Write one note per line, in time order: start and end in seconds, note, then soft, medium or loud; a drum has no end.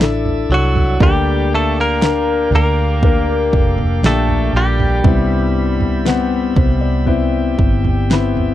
0.00 0.46 A1 medium
0.00 1.01 D4 medium
0.00 1.02 E4 medium
0.00 0.96 A4 medium
0.00 1.01 A4 medium
0.00 5.00 D5 medium
0.00 0.96 E5 medium
0.00 0.98 E6 medium
0.00 snare loud
0.26 floor tom medium
0.49 0.96 C2 medium
0.49 0.98 F#3 medium
0.54 0.99 F#4 medium
0.76 floor tom medium
1.00 2.47 D2 loud
1.00 2.48 D3 medium
1.00 1.48 G3 medium
1.00 1.96 A#3 medium
1.00 1.96 D4 medium
1.00 8.54 G4 medium
1.00 1.97 G4 loud
1.00 1.53 G4 medium
1.00 5.00 F5 medium
1.00 5.00 G5 medium
1.00 kick loud
1.00 floor tom loud
1.54 1.76 A3 medium
1.54 1.79 A4 loud
1.80 2.50 A#3 medium
1.80 2.54 A#4 medium
2.02 2.97 A#3 medium
2.02 2.98 D4 medium
2.02 2.98 A#4 medium
2.02 snare loud
2.51 3.55 D2 medium
2.51 floor tom medium
2.55 4.01 A#3 medium
2.55 3.55 A#4 loud
3.02 3.98 A#3 medium
3.02 3.99 D4 medium
3.02 3.99 A#4 medium
3.02 kick medium
3.02 floor tom medium
3.53 4.00 F1 medium
3.53 4.06 A4 loud
3.53 kick medium
3.78 floor tom medium
4.03 4.50 A#1 medium
4.03 4.99 A#2 medium
4.03 4.52 A3 medium
4.03 4.99 D4 medium
4.03 4.99 G4 medium
4.03 4.56 A4 medium
4.03 snare loud
4.29 floor tom medium
4.53 5.00 A#1 loud
4.53 8.08 G3 medium
4.53 6.78 G4 medium
4.80 floor tom medium
5.04 6.52 C2 loud
5.04 6.52 G2 medium
5.04 6.00 B3 medium
5.04 6.01 C4 medium
5.04 6.01 E4 loud
5.04 8.54 E5 medium
5.04 7.06 B5 medium
5.04 kick loud
5.04 floor tom loud
5.81 floor tom medium
6.05 7.02 B3 medium
6.05 7.02 C4 medium
6.05 7.03 F#5 loud
6.05 snare loud
6.56 7.55 C2 loud
6.56 6.80 C5 medium
6.56 kick loud
6.56 floor tom medium
6.78 8.08 F4 medium
6.78 7.05 D5 medium
7.06 8.05 B3 medium
7.06 8.05 C4 medium
7.06 8.06 E4 medium
7.06 7.80 E5 medium
7.06 8.54 G5 medium
7.06 floor tom medium
7.58 8.54 G1 medium
7.58 kick medium
7.84 8.09 G5 medium
7.84 floor tom medium
8.10 8.54 B3 medium
8.10 8.54 C4 medium
8.10 8.54 E4 medium
8.10 8.54 B5 medium
8.10 snare loud
8.37 floor tom medium